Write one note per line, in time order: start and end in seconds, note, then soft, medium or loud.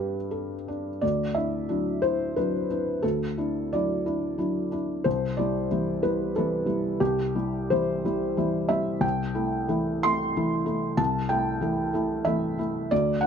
0.00 0.98 G2 soft
0.00 1.05 G3 soft
0.00 0.68 D4 soft
0.00 0.53 G4 soft
0.00 0.16 A4 soft
0.00 0.67 B4 medium
0.31 0.89 A4 soft
0.68 1.03 D4 soft
1.01 1.35 D2 soft
1.01 1.36 D5 medium
1.35 1.66 D4 soft
1.35 1.66 E4 soft
1.35 2.02 E5 medium
1.69 1.99 F#3 soft
1.69 1.99 D4 soft
1.69 1.99 E4 soft
2.02 2.33 D4 soft
2.02 2.33 E4 soft
2.02 2.36 C5 medium
2.36 2.67 F#3 soft
2.36 2.67 D4 soft
2.36 2.67 E4 soft
2.36 3.03 B4 soft
2.70 3.00 D4 soft
2.70 3.00 E4 soft
3.02 3.37 D2 soft
3.02 3.73 A4 medium
3.38 3.70 D4 soft
3.38 3.70 E4 soft
3.73 4.04 F#3 soft
3.73 4.04 D4 soft
3.73 4.04 E4 soft
3.73 4.72 D5 medium
4.06 4.36 D4 soft
4.06 4.36 E4 soft
4.38 4.68 F#3 soft
4.38 4.69 D4 soft
4.38 4.69 E4 soft
4.72 5.02 D4 soft
4.72 5.02 E4 soft
5.04 5.37 C2 soft
5.04 5.37 C5 medium
5.37 5.68 G3 soft
5.37 5.68 E4 soft
5.37 6.02 D5 medium
5.71 6.00 E3 soft
5.71 6.00 G3 soft
5.71 6.00 E4 soft
6.03 6.32 G3 soft
6.03 6.32 E4 soft
6.03 6.35 B4 medium
6.36 6.65 E3 soft
6.36 6.64 G3 soft
6.36 6.65 E4 soft
6.36 7.01 A4 medium
6.66 6.96 G3 soft
6.66 6.97 E4 soft
7.00 7.35 C2 soft
7.00 7.72 G4 medium
7.35 7.68 G3 soft
7.35 7.68 E4 soft
7.70 8.02 E3 soft
7.70 8.02 G3 soft
7.70 8.03 E4 soft
7.70 8.70 C5 medium
8.05 8.35 G3 soft
8.05 8.35 E4 soft
8.37 8.67 E3 soft
8.37 8.67 G3 soft
8.37 8.67 E4 soft
8.69 8.99 G3 soft
8.69 8.99 E4 soft
8.69 9.02 E5 medium
9.01 9.33 C2 medium
9.01 10.02 G5 medium
9.35 9.65 A3 soft
9.35 9.65 E4 soft
9.68 10.00 E3 soft
9.68 9.99 A3 soft
9.68 10.00 E4 soft
10.03 10.33 A3 soft
10.03 10.33 E4 soft
10.03 10.99 C6 medium
10.37 10.65 E3 soft
10.37 10.65 A3 soft
10.37 10.64 E4 soft
10.66 10.95 A3 soft
10.66 10.95 E4 soft
10.97 11.28 C2 medium
10.97 11.29 A5 medium
11.29 11.58 A3 soft
11.29 11.58 E4 soft
11.29 12.26 G5 medium
11.61 11.90 E3 soft
11.61 11.91 A3 soft
11.61 11.91 E4 soft
11.93 12.23 A3 soft
11.93 12.23 E4 soft
12.25 12.55 E3 soft
12.25 12.56 A3 soft
12.25 12.56 E4 soft
12.25 12.58 E5 medium
12.58 12.87 A3 soft
12.58 12.88 E4 soft
12.91 13.22 D2 medium
12.91 13.23 D5 medium
13.21 13.27 B3 soft
13.21 13.27 D4 soft
13.21 13.27 F#5 medium